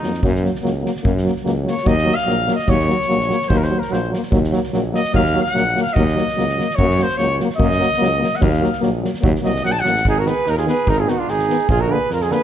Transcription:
Already playing: D#4
0.03 F2 F#3 A#3, snare
0.14 snare
0.23 F#2 F#3 A#3, kick
0.34 snare
0.42 F#3 A#3, snare
0.55 snare
0.62 C#2 F#3 A#3, snare
0.82 F#3 A#3, snare
0.96 snare
1.03 F#2 F#3 A#3, kick
1.17 snare
1.24 F#3 A#3, snare
1.36 snare
1.44 C#2 F#3 A#3, snare
1.63 F#3
1.67 A#3 C#5, snare
1.77 snare
1.84 D#2 F#3 A#3 D#5, kick
1.98 snare
2.05 F#3 A#3, snare
2.14 F5, snare
2.25 A#1 F#3 A#3, snare
2.47 F#3 A#3, snare
2.55 D#5, snare
2.67 D#2 F#3 A#3 C#5, kick
2.79 snare
2.86 F#3 A#3, snare
3.01 snare
3.08 A#1 F#3 A#3, snare
3.20 snare
3.27 F#3 A#3, snare
3.42 snare
3.49 D#2 F#3 A#3 C5, kick
3.57 A#4
3.62 C5, snare
3.69 F#3 A#3
3.79 A#4, snare
3.90 A#1 F#3 A#3 C5, snare
4.10 F#3 A#3, snare
4.22 snare
4.31 D#2 F#3 A#3, kick
4.44 snare
4.52 F#3 A#3, snare
4.63 snare
4.73 A#1 F#3 A#3, snare
4.93 F#3 A#3 D#5, snare
5.05 snare
5.13 D#2 F#3 A#3 F5, kick
5.25 snare
5.33 F#3 A#3, snare
5.42 F#5
5.46 snare
5.53 A#1 F#3 A#3, snare
5.75 F#3 A#3, snare
5.82 F5
5.86 snare
5.93 D#2 F#3 A#3 D#5, kick
6.08 snare
6.15 F#3 A#3, snare
6.28 snare
6.36 C#2 F#3 A#3, snare
6.49 snare
6.56 F#3 A#3, snare
6.70 snare
6.76 F#2 F#3 A#3 C#5, kick
6.90 snare
6.98 F#3 A#3, snare
7.03 C5
7.09 snare
7.17 C#2 F#3 A#3 C#5, snare
7.39 F#3 A#3, snare
7.50 snare
7.57 F#2 F#3 A#3 D#5, kick
7.71 snare
7.80 F#3 A#3, snare
7.92 snare
7.98 C#2 F#3 A#3
8.02 snare
8.20 F#3 A#3, snare
8.33 F#5, snare
8.39 D#2 F#3 A#3 F5, kick
8.53 snare
8.61 F#3 A#3, snare
8.73 snare
8.81 A#1 F#3 A#3, snare
9.01 F#3 A#3, snare
9.14 snare
9.21 D#2 F#3 A#3, kick
9.35 snare
9.42 C2 F#3 A#3 D#5, snare
9.55 snare
9.63 A#1 F#3 A#3 F#5, snare
9.72 A5, snare
9.80 F#3 F#5
9.85 A1 A#3, snare
9.95 snare
10.05 G#1 D#4 G#4, kick
10.18 F#4 A#4
10.24 D#3 B3 G#4 B4, snare
10.46 D#2 D#4 A#4, snare
10.56 F4 G#4, snare
10.65 D#3 B3 G#4, snare
10.69 B4
10.87 G#1 D#4 A#4, kick
10.98 F4 G#4
11.06 D#3 B3 D#4 F#4, snare
11.18 D4 F4
11.28 G#1 D#4 G#4, snare
11.39 snare
11.48 D#3 B3, snare
11.69 A#1 F4 G#4, kick
11.80 F#4 A#4
11.88 D3 A#3 G#4
11.92 B4
12.10 F2 F4 A#4, snare
12.21 F4 G#4, snare
12.29 D3 A#3 G#4 B4, snare

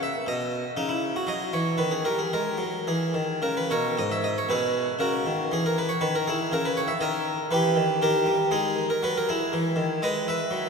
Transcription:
Already playing: C#3
0.03 E5
0.27 B2 D#5
0.77 C#3 D#4
0.89 E4
1.16 F#4
1.27 F#3 D#5
1.53 E3 C#5
1.78 D#3 B4
1.91 G#4
2.05 G3 A#4
2.19 G#4
2.33 G#3 A#4
2.58 F#3
2.87 E3 G#4
3.14 D#3
3.42 C#3 A#4
3.57 B4
3.70 B2 A#4 C#5
3.97 G#2 D#5
4.12 E5
4.24 D#5
4.38 C#5
4.49 B2 G#4 B4
4.99 C#3 F#4 A#4
5.26 D#3
5.52 E3 G#4
5.66 A#4
5.78 B4
5.89 C#5
6.01 D#3 B4
6.15 A#4
6.27 E4 G#4
6.52 C#3 A#4
6.65 B4
6.77 C#5
6.88 E5
7.01 D#3 A#4 D#5
7.51 E3 G4 B4
7.76 D#3
8.02 D#3 G4 A#4
8.26 G3
8.51 G#3 D#4 G#4
8.90 A#4
9.03 F#3 B4
9.18 A#4
9.29 E4 G#4
9.53 E3
9.76 D#3
10.02 G#3 B4 D#5
10.28 B4 E5
10.51 F#3

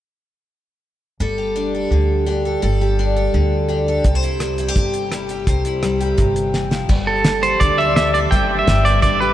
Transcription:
1.20 G1 G3 A4
1.38 G4
1.56 D4
1.75 A4
1.91 D2 D3
2.26 D4 G4
2.45 A4
2.62 G1 G3 A4
2.81 G4
2.99 D4
3.16 A4
3.34 D2 D3
3.69 D4 G4
3.88 A4
4.04 C2 C3 A4, kick, closed hi-hat
4.15 C5
4.23 E4, closed hi-hat
4.40 G3, cross-stick, closed hi-hat
4.58 E4, closed hi-hat
4.68 G4
4.76 G1 C3, kick, closed hi-hat
4.94 closed hi-hat
5.12 G3 E4, cross-stick, closed hi-hat
5.29 G4, closed hi-hat
5.47 C2 C3 C5, kick, closed hi-hat
5.65 E4, closed hi-hat
5.83 G3, cross-stick, closed hi-hat
6.01 G4, closed hi-hat
6.17 G1 C3, kick, closed hi-hat
6.36 closed hi-hat
6.54 E3, snare
6.71 F3, snare
6.89 G1 G3, kick, crash
7.07 A4
7.24 G4, snare, closed hi-hat
7.43 B4 C5, closed hi-hat
7.60 D2 D3 B4 D5, kick, closed hi-hat
7.78 D5 E5
7.96 G4 E5, snare, closed hi-hat
8.14 B4 D5, closed hi-hat
8.31 G1 G3 G5, kick, closed hi-hat
8.59 E5
8.67 G1 G4 B4, snare, closed hi-hat
8.85 B4 D5, closed hi-hat
9.02 A1 D3 B4 D5, kick, closed hi-hat
9.20 G4 B4

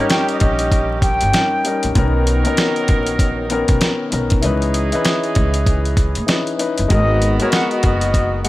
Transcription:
Already playing: D#3 G3 C#4 G4
0.00 D#4 A#4
0.10 G5, snare, closed hi-hat
0.29 D#5, closed hi-hat
0.40 A#1 D#5, kick, closed hi-hat
0.59 closed hi-hat
0.72 kick, closed hi-hat
1.02 G5, kick, closed hi-hat
1.21 G1, closed hi-hat
1.32 G3 C#4 D#4 A#4, snare, closed hi-hat
1.64 G3 C#4 D#4 A#4, closed hi-hat
1.83 A#1, closed hi-hat
1.94 B1 D#3 F#3 B3 C#4 D#4 A#4, kick, closed hi-hat
1.98 A#4
2.27 closed hi-hat
2.44 D#3 B3 C#4 A#4, closed hi-hat
2.57 snare, closed hi-hat
2.76 closed hi-hat
2.88 A#1, kick, closed hi-hat
3.06 closed hi-hat
3.19 kick, closed hi-hat
3.49 D#3 B3 C#4 A#4, closed hi-hat
3.68 B1, kick, closed hi-hat
3.81 snare, closed hi-hat
4.10 B1 D#3 B3 C#4 A#4, closed hi-hat
4.30 kick, closed hi-hat
4.42 C#2 E3 C#4 D#4 G#4 B4, closed hi-hat
4.62 closed hi-hat
4.74 closed hi-hat
4.92 E3 C#4 D#4 B4, closed hi-hat
5.05 snare, closed hi-hat
5.23 closed hi-hat
5.35 C#2, kick, closed hi-hat
5.54 closed hi-hat
5.66 kick, closed hi-hat
5.85 closed hi-hat
5.97 kick, closed hi-hat
6.15 D#2, closed hi-hat
6.26 E3 C#4 D#4 B4, snare, closed hi-hat
6.47 closed hi-hat
6.57 E3 C#4 D#4 B4, closed hi-hat
6.78 F#1, closed hi-hat
6.88 G#1 D#3 G#3 B3 F#4 A#4 D#5, kick, closed hi-hat
7.22 closed hi-hat
7.39 G#3 B3 F#4 A#4 C#5, closed hi-hat
7.52 F#5, snare, closed hi-hat
7.71 D#5, closed hi-hat
7.83 F#1 D#5, kick, closed hi-hat
8.01 closed hi-hat
8.14 kick, closed hi-hat
8.43 G#3 B3 F#5, closed hi-hat

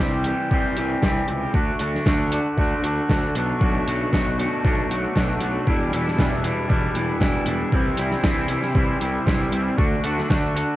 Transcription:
0.00 C2 C3 E3 G3 C4 G4
0.24 C3 E3 G3 C4 G4, closed hi-hat
0.50 C2 C3 E3 G3 C4 G4, kick
0.76 C2 C3 E3 G3 C4 G4, closed hi-hat
1.02 C2 C3 E3 G3 C4 G4, kick, snare
1.27 C#2 C3 E3 G3 C4 G4, closed hi-hat
1.54 D2 D3 A3 D4 F#4, kick
1.79 D2 D3 A3 D4 F#4, closed hi-hat
1.95 snare
2.06 D2 D3 A3 D4 F#4, kick, snare
2.32 D3 A3 D4 F#4, closed hi-hat
2.57 D2 D3 A3 D4 F#4, kick
2.83 D2 D3 A3 D4 F#4, closed hi-hat
3.09 D2 D3 A3 D4 F#4, kick, snare
3.35 B1 B2 F#3 A3 D4 F#4, closed hi-hat
3.61 B1 B2 F#3 A3 D4 F#4, kick
3.86 B1 B2 F#3 A3 D4 F#4, closed hi-hat
4.12 B1 B2 F#3 A3 D4 F#4, kick, snare
4.38 B2 F#3 A3 D4 F#4, closed hi-hat
4.64 B1 B2 F#3 A3 D4 F#4, kick
4.89 B1 B2 F#3 A3 D4 F#4, closed hi-hat
5.15 B1 B2 F#3 A3 D4 F#4, kick, snare
5.40 B1 B2 F#3 A3 D4 F#4, closed hi-hat
5.65 E1 E2 B2 E3 G3 D4 E4, kick
5.92 E1 E2 B2 E3 G3 D4 E4, closed hi-hat
6.08 snare
6.16 E1 E2 B2 E3 G3 D4 E4, kick, snare
6.43 E2 B2 E3 G3 D4 E4, closed hi-hat
6.67 E1 E2 B2 E3 G3 D4 E4, kick
6.95 E1 E2 B2 E3 G3 D4 E4, closed hi-hat
7.20 E1 E2 B2 E3 G3 D4 E4, kick, snare
7.46 E1 E2 B2 E3 G3 D4 E4, closed hi-hat
7.72 C2 C3 E3 G3 C4 E4, kick
7.97 C2 C3 E3 G3 C4 E4, closed hi-hat
8.11 snare
8.23 C2 C3 E3 G3 C4 E4, kick, snare
8.48 C3 E3 G3 C4 E4, closed hi-hat
8.63 snare
8.74 C2 C3 E3 G3 C4 E4, kick
9.01 C2 C3 E3 G3 C4 E4, closed hi-hat
9.26 C2 C3 E3 G3 C4 E4, kick, snare
9.52 C2 C3 E3 G3 C4 E4, closed hi-hat
9.76 D2 D3 A3 D4 F#4, kick
10.03 D2 D3 A3 D4 F#4, closed hi-hat
10.18 snare
10.28 D2 D3 A3 D4 F#4, kick, snare
10.54 D3 A3 D4 F#4, closed hi-hat

